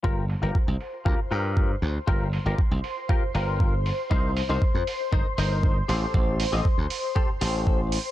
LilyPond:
<<
  \new Staff \with { instrumentName = "Analog synth pad" } { \time 4/4 \key g \minor \tempo 4 = 118 <c'' c'''>1~ | <c'' c'''>1~ | <c'' c'''>1~ | <c'' c'''>1 | }
  \new Staff \with { instrumentName = "Clean electric guitar" } { \time 4/4 \key g \minor <f' g' bes'>8 r16 <f' g' bes'>16 r4 <f' g' bes'>16 r16 <f' g' bes'>8. r8. | <f' g' bes'>8 r16 <f' g' bes'>16 r4 <f' g' bes'>16 r16 <f' g' bes'>8. r8. | <ees' bes' c''>8 r16 <ees' bes' c''>16 r4 <ees' bes' c''>16 r16 <ees' bes' c''>8. r16 <g' a' c''>8~ | <g' a' c''>8 r16 <g' a' ees''>16 r4 <g' a' c''>16 r16 <g' a' c''>8. r8. | }
  \new Staff \with { instrumentName = "Slap bass" } { \clef bass \time 4/4 \key g \minor g,,8 r16 g,,16 r16 c,16 r8 d,16 r16 g,8. r16 d,16 r16 | g,,8 r16 g,,16 r16 c,16 r4 g,,4 r8 | c,8 r16 c,16 r16 f,16 r8 g,,16 r16 g,,8. r16 a,,16 r16 | a,,8 r16 a,,16 r16 d,16 r4 a,,4 r8 | }
  \new DrumStaff \with { instrumentName = "Drums" } \drummode { \time 4/4 bd8 hho8 bd8 hho8 bd8 hho8 bd8 hho8 | bd8 hho8 bd8 hho8 bd8 hho8 bd8 hho8 | bd8 hho8 bd8 hho8 bd8 hho8 bd8 hho8 | bd8 hho8 bd8 hho8 bd8 hho8 bd8 hho8 | }
>>